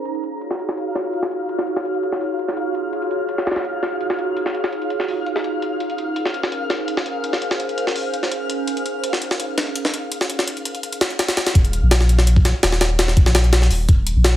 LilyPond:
<<
  \new Staff \with { instrumentName = "Synth texture" } { \time 4/4 \key ees \dorian \tempo 4 = 167 f''1~ | f''1~ | f''1~ | f''1~ |
f''1~ | f''1~ | f''1~ | f''1 |
r1 | r1 | }
  \new Staff \with { instrumentName = "Ambient pad" } { \time 4/4 \key ees \dorian <ees' f' ges' aes' des''>1~ | <ees' f' ges' aes' des''>1~ | <ees' f' ges' aes' des''>1~ | <ees' f' ges' aes' des''>1 |
<des' bes' c''>1~ | <des' bes' c''>1~ | <des' bes' c''>1~ | <des' bes' c''>1 |
r1 | r1 | }
  \new Staff \with { instrumentName = "Sub bass" } { \clef bass \time 4/4 \key ees \dorian r1 | r1 | r1 | r1 |
r1 | r1 | r1 | r1 |
ees,,8. bes,,2 r16 ees,,4~ | ees,,8. bes,,4~ bes,,16 ees,,8 ees,,8. bes,,8. | }
  \new DrumStaff \with { instrumentName = "Drums" } \drummode { \time 4/4 hh16 hh16 hh8 hh16 sn16 hh16 sn16 hh8 <hh sn>8 hh16 sn16 hh8 | hh16 sn16 hh16 sn16 hh16 hh16 hh16 sn16 hho8 hh16 sn16 hh8 hh8 | hh16 hh16 hh8 hh16 sn16 <hh sn>32 <hh sn>32 <hh sn>16 hh8 <hh sn>8 hh16 sn16 hh8 | hh16 sn16 hh16 sn16 hh16 hh16 hh16 sn16 hho8 hh16 sn16 hh8 hh8 |
hh16 hh16 hh8 hh16 sn16 hh16 sn16 hh8 <hh sn>8 hh16 sn16 hh8 | hh16 sn16 hh16 sn16 hh16 hh16 hh16 sn16 hho8 hh16 sn16 hh8 hh8 | hh16 hh16 hh8 hh16 sn16 hh16 sn16 hh8 <hh sn>8 hh16 sn16 hh8 | hh16 sn16 hh16 sn16 hh16 hh16 hh16 hh16 hh16 hh16 <hh sn>16 hh16 <hh sn>16 <hh sn>16 <hh sn>16 <hh sn>16 |
<hh bd>16 hh16 hh8 <hh sn>16 sn16 hh16 sn16 hh16 bd16 <hh sn>8 <hh sn>16 sn16 <hh sn>8 | <hh sn>16 sn16 <hh bd>16 sn16 <hh sn>16 hh16 <hh sn>16 sn16 hho8 <hh bd>8 hh8 <hh sn>8 | }
>>